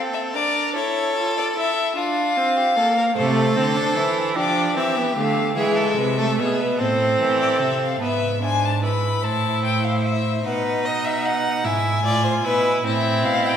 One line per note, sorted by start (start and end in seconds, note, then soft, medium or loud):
0.00 0.36 C4 medium
0.00 0.36 A4 medium
0.14 0.22 E5 medium
0.34 0.76 D4 medium
0.34 0.74 A#4 medium
0.34 0.74 D5 loud
0.75 1.16 E4 medium
0.75 1.94 A4 loud
0.75 1.35 C#5 medium
1.16 1.55 F4 medium
1.37 1.45 D5 medium
1.56 1.95 E4 medium
1.56 1.96 E5 medium
1.96 2.38 D4 medium
1.96 2.58 F4 medium
1.96 3.14 F5 loud
2.37 2.78 C4 medium
2.57 2.76 G4 medium
2.76 3.15 A#3 medium
2.76 2.96 A4 medium
2.98 3.05 A#4 medium
3.16 3.53 C3 medium
3.16 3.58 A3 loud
3.16 4.35 A4 loud
3.16 4.34 C5 medium
3.56 3.95 D3 medium
3.56 3.77 C4 medium
3.76 3.97 D4 medium
3.96 4.37 E3 medium
3.96 4.37 E4 medium
4.35 4.77 F3 medium
4.35 4.78 D4 loud
4.35 5.55 G4 medium
4.35 4.76 D5 medium
4.75 5.16 E3 medium
4.75 4.98 C4 medium
4.75 5.16 E5 medium
4.96 5.17 B3 loud
5.16 5.56 D3 medium
5.16 5.57 A3 medium
5.16 5.57 F5 medium
5.56 5.97 E3 medium
5.56 6.20 G#3 loud
5.56 5.78 G#4 medium
5.56 6.78 E5 medium
5.77 5.99 A4 medium
5.97 6.40 C3 medium
5.97 6.18 B4 medium
6.18 6.41 A3 medium
6.18 6.38 A4 medium
6.38 6.81 B2 medium
6.38 6.81 B3 medium
6.38 6.61 G#4 medium
6.60 6.78 B4 medium
6.78 7.20 A2 medium
6.78 8.00 C4 loud
6.78 7.99 A4 medium
6.78 7.39 C5 medium
7.20 7.62 E3 medium
7.40 7.60 D5 medium
7.61 8.00 C3 medium
7.61 7.81 E5 medium
7.82 8.02 F5 medium
8.01 9.19 G#2 medium
8.01 8.39 B3 medium
8.01 8.40 B4 medium
8.01 8.40 E5 medium
8.41 8.84 D4 medium
8.41 8.82 C5 medium
8.41 8.66 G#5 medium
8.65 8.84 A5 medium
8.82 10.43 E4 medium
8.82 9.24 B4 medium
8.82 9.26 B5 medium
9.23 10.42 A2 medium
9.23 10.46 C5 medium
9.23 9.64 A5 medium
9.64 9.85 G5 medium
9.84 10.04 F5 medium
10.05 10.44 E5 medium
10.43 11.65 B2 medium
10.43 11.66 D#4 medium
10.43 10.87 B4 medium
10.43 11.68 F#5 medium
10.85 11.06 D#5 medium
11.05 11.27 E5 medium
11.26 11.66 F#5 medium
11.64 12.03 G#2 medium
11.64 12.04 E4 medium
11.64 12.04 E5 medium
11.64 12.85 G#5 medium
12.03 12.43 A2 medium
12.03 12.46 F4 medium
12.03 12.24 D5 medium
12.24 12.32 C5 medium
12.43 12.83 B2 medium
12.43 12.86 E4 medium
12.43 12.84 B4 loud
12.83 13.25 A2 medium
12.83 13.57 C4 loud
12.83 13.57 E4 loud
12.83 13.26 E5 medium
13.24 13.57 B2 medium
13.24 13.48 F5 loud
13.46 13.57 G5 medium